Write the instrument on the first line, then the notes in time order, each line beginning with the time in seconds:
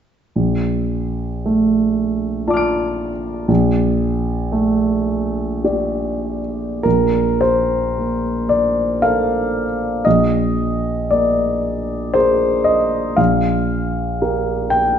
grand piano
0.36 A#1
1.46 A3
2.48 F4 D5 A5 D6
2.54 F6 D7
3.48 A#1
4.52 A3
5.64 G4 D5
6.83 A#1 A#4
7.41 C5
7.98 A#3
8.49 D5
9.02 A4 A#4 F5
10.05 A#1 D#5
11.11 A#3 D5
12.14 G#4 A#4 C5
12.64 D#5
13.17 A#1 F5
14.22 G4 A#4
14.70 G5